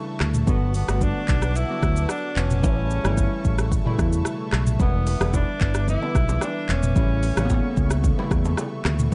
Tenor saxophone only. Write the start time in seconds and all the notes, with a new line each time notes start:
0.48 B3
0.76 B3
1.02 D4
1.56 E4
2.11 D4
2.37 C#4
4.80 B3
5.34 D4
5.89 E4
6.43 D4
6.70 C#4